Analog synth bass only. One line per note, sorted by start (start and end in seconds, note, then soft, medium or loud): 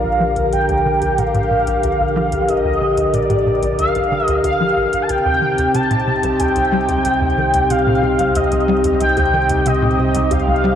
0.04 0.10 A#1 loud
0.20 0.35 F3 loud
0.36 0.46 D2 medium
0.52 0.62 A#1 medium
0.69 0.84 D2 loud
0.85 1.00 D3 medium
1.02 1.11 D2 medium
1.18 1.28 A#2 medium
1.34 1.49 A2 loud
1.50 1.65 A#2 medium
1.67 1.77 A#1 loud
1.83 1.93 D2 medium
2.00 2.05 A#1 loud
2.16 2.30 F3 loud
2.32 2.42 D2 medium
2.48 2.58 A#1 medium
2.64 2.79 D2 loud
2.81 2.95 D3 medium
2.97 3.07 D2 medium
3.13 3.23 A#2 medium
3.29 3.44 A2 loud
3.46 3.61 A#2 medium
3.62 3.72 A#1 loud
3.79 3.88 D2 medium
3.95 4.01 A#1 loud
4.11 4.21 D3 medium
4.28 4.42 D2 loud
4.44 4.54 D2 medium
4.60 4.75 F3 medium
4.76 4.86 A#1 loud
4.93 5.03 A#1 medium
5.09 5.19 C2 medium
5.25 5.40 D#2 loud
5.42 5.56 D#3 medium
5.58 5.68 D#2 medium
5.74 5.84 C3 medium
5.90 6.05 A#2 loud
6.07 6.22 C3 medium
6.23 6.33 C2 loud
6.40 6.49 D#2 medium
6.56 6.62 C2 loud
6.72 6.87 G3 loud
6.88 6.98 D#2 medium
7.05 7.15 C2 medium
7.21 7.36 D#2 loud
7.37 7.52 D#3 medium
7.54 7.63 D#2 medium
7.70 7.80 C3 medium
7.86 8.01 A#2 loud
8.03 8.17 C3 medium
8.19 8.29 C2 loud
8.35 8.45 D#2 medium
8.52 8.58 C2 loud
8.68 8.83 G3 loud
8.84 8.94 D#2 medium
9.00 9.10 C2 medium
9.17 9.31 D#2 loud
9.33 9.48 D#3 medium
9.49 9.59 D#2 medium
9.66 9.75 C3 medium
9.82 9.97 A#2 loud
9.98 10.13 C3 medium
10.15 10.24 C2 loud
10.31 10.41 D#2 medium
10.47 10.53 C2 loud
10.64 10.75 G3 loud